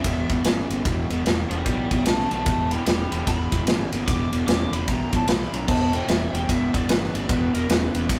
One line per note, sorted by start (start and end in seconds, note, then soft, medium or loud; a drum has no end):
0.00 0.26 E5 loud
0.04 0.23 E1 medium
0.04 0.27 E2 medium
0.04 0.27 B2 medium
0.04 kick medium
0.04 ride loud
0.29 0.41 E1 medium
0.29 0.44 E2 medium
0.29 0.44 B2 medium
0.29 kick medium
0.29 ride medium
0.44 0.63 G1 medium
0.44 0.67 E2 medium
0.44 0.68 C#3 medium
0.44 snare loud
0.44 ride loud
0.70 0.81 G1 medium
0.70 0.84 E2 medium
0.70 0.84 C#3 medium
0.70 ride medium
0.85 1.04 E1 loud
0.85 1.08 E2 medium
0.85 1.08 B2 medium
0.85 kick loud
0.85 ride loud
1.10 1.21 E1 medium
1.10 1.24 E2 medium
1.10 1.24 B2 medium
1.10 ride medium
1.25 1.44 E1 loud
1.25 1.48 E2 medium
1.25 1.49 C#3 medium
1.25 snare loud
1.25 ride medium
1.50 1.61 E1 medium
1.50 1.64 E2 medium
1.50 1.65 C#3 medium
1.50 1.65 D5 medium
1.50 1.65 G5 medium
1.50 ride medium
1.65 1.85 B1 medium
1.65 1.88 E2 medium
1.65 1.89 B2 loud
1.65 1.89 D5 medium
1.65 1.90 G5 medium
1.65 kick medium
1.65 ride medium
1.91 2.02 B1 medium
1.91 2.05 E2 medium
1.91 2.05 B2 medium
1.91 2.05 D5 medium
1.91 2.06 G5 medium
1.91 kick medium
1.91 ride medium
2.06 2.25 B1 medium
2.06 2.29 E2 medium
2.06 2.29 C#3 medium
2.06 2.30 E5 medium
2.06 2.31 A5 loud
2.06 snare loud
2.06 ride loud
2.20 snare soft
2.31 2.43 B1 medium
2.31 2.44 E2 medium
2.31 2.45 C#3 medium
2.31 2.45 E5 medium
2.31 2.46 A5 loud
2.31 ride medium
2.45 2.76 E1 medium
2.45 2.69 E2 loud
2.45 2.69 B2 loud
2.45 2.70 E5 medium
2.45 2.71 A5 medium
2.45 kick loud
2.45 ride loud
2.71 2.85 E2 medium
2.71 2.85 B2 medium
2.71 2.85 G5 medium
2.71 2.85 B5 medium
2.71 ride medium
2.86 3.05 E1 loud
2.86 3.09 E2 medium
2.86 3.09 C#3 loud
2.86 3.10 G5 medium
2.86 3.11 B5 medium
2.86 snare loud
2.86 ride loud
3.11 3.23 E1 medium
3.11 3.25 E2 medium
3.11 3.25 C#3 medium
3.11 3.26 G5 medium
3.11 3.27 B5 medium
3.11 ride medium
3.26 3.46 E1 medium
3.26 3.49 E2 medium
3.26 3.50 B2 medium
3.26 3.67 B5 loud
3.26 kick medium
3.26 ride loud
3.51 3.63 E1 medium
3.51 3.65 E2 medium
3.51 3.66 B2 medium
3.51 kick medium
3.51 ride medium
3.67 3.86 G1 medium
3.67 3.90 E2 medium
3.67 3.90 C#3 medium
3.67 snare loud
3.67 ride loud
3.92 4.03 G1 medium
3.92 4.06 E2 medium
3.92 4.06 C#3 medium
3.92 ride medium
4.07 4.26 E1 loud
4.07 4.30 E2 medium
4.07 4.30 B2 loud
4.07 4.32 D6 loud
4.07 kick loud
4.07 ride loud
4.32 4.43 E1 medium
4.32 4.45 E2 medium
4.32 4.46 B2 medium
4.32 ride medium
4.47 4.66 E1 medium
4.47 4.70 E2 medium
4.47 4.70 C#3 medium
4.47 4.72 D6 loud
4.47 snare loud
4.47 ride loud
4.71 4.83 E1 medium
4.71 4.86 E2 medium
4.71 4.87 C#3 medium
4.71 4.88 B5 medium
4.71 ride medium
4.87 5.07 B1 medium
4.87 5.10 E2 medium
4.87 5.10 B2 medium
4.87 5.13 A#5 loud
4.87 kick medium
4.87 ride loud
5.12 5.24 B1 medium
5.12 5.26 E2 medium
5.12 5.26 B2 medium
5.12 5.28 A5 medium
5.12 kick medium
5.12 ride medium
5.27 5.46 B1 loud
5.27 5.50 E2 medium
5.27 5.51 C#3 medium
5.27 5.53 B5 medium
5.27 snare loud
5.27 ride loud
5.42 snare soft
5.52 5.64 B1 medium
5.52 5.66 E2 medium
5.52 5.67 C#3 medium
5.52 5.68 A#5 loud
5.52 ride medium
5.67 5.98 E1 loud
5.67 5.90 E2 medium
5.67 5.91 B2 medium
5.67 5.93 A5 loud
5.67 kick loud
5.67 crash loud
5.93 6.06 E2 medium
5.93 6.07 B2 medium
5.93 6.08 G5 medium
5.93 ride medium
6.08 6.27 E1 medium
6.08 6.31 E2 medium
6.08 6.31 C#3 medium
6.08 6.33 E5 medium
6.08 snare loud
6.08 ride medium
6.33 6.44 E1 medium
6.33 6.46 E2 medium
6.33 6.47 C#3 medium
6.33 6.48 G5 medium
6.33 ride medium
6.48 6.67 E1 medium
6.48 6.71 E2 medium
6.48 6.71 B2 medium
6.48 6.73 E5 medium
6.48 kick medium
6.48 ride loud
6.74 6.85 E1 medium
6.74 6.87 E2 medium
6.74 6.88 B2 medium
6.74 6.88 D5 loud
6.74 kick medium
6.74 ride medium
6.88 7.07 G1 medium
6.88 7.11 E2 medium
6.88 7.12 C#3 medium
6.88 7.13 B4 loud
6.88 snare loud
6.88 ride loud
7.04 snare soft
7.13 7.25 G1 medium
7.13 7.27 E2 medium
7.13 7.27 C#3 medium
7.13 7.29 D5 loud
7.13 ride medium
7.28 7.48 E1 loud
7.28 7.51 E2 medium
7.28 7.51 B2 loud
7.28 7.53 B4 medium
7.28 kick loud
7.28 ride loud
7.54 7.65 E1 medium
7.54 7.67 E2 medium
7.54 7.68 B2 medium
7.54 7.69 A#4 medium
7.54 ride medium
7.69 7.88 E1 medium
7.69 7.91 E2 medium
7.69 7.92 C#3 loud
7.69 8.06 B4 loud
7.69 snare loud
7.69 ride loud
7.94 8.05 E1 loud
7.94 8.08 E2 medium
7.94 8.08 C#3 medium
7.94 ride medium
8.09 8.19 B1 medium
8.09 8.19 E2 medium
8.09 8.19 B2 medium
8.09 kick medium
8.09 ride loud